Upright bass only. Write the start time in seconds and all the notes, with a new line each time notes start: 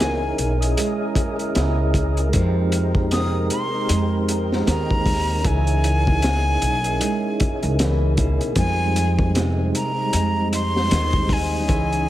Already playing: C#2
0.39 B1
1.56 C#2
2.34 F2
3.90 F2
4.67 D#2
5.45 C#2
6.62 B1
7.63 C#2
8.56 F2
10.13 F2
10.91 D#2
11.69 C#2